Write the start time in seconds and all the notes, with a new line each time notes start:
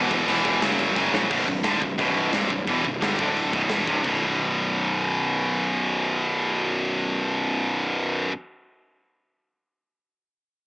Already playing: E2 B2 E3
0.11 E1, kick, crash
0.27 E1 E2 B2 E3, crash
0.44 E1 E2 B2 E3, kick, crash
0.62 F#1 F#2 C#3 F#3, snare, crash
0.79 F#1, crash
0.96 F#1 F#2 C#3 F#3, kick, snare
1.13 A#1 F#2 C#3 F#3, snare
1.30 B0 B1 F#2 B2, kick, crash
1.47 B0 B1 F#2, kick
1.63 D1 D2 A2 D3, snare, open hi-hat
1.82 B0 B1 F#2, kick
1.98 B0 B1 F#2 B2, kick, open hi-hat
2.33 C1 C2 G2 C3, snare, open hi-hat
2.50 B0 B1 F#2, kick
2.67 E1 E2 B2 E3, kick, open hi-hat
2.85 B0 B1 F#2, kick
3.01 G1 G2 D3 G3, snare, open hi-hat
3.19 D1 D2 A2 D3, kick
3.37 open hi-hat
3.53 B0 B1 F#2 B2, kick
3.70 E1 E2 B2 E3, snare, open hi-hat
3.87 C1 C2 G2 C3, kick
4.03 B0 B1 F#2, kick, crash
4.08 B2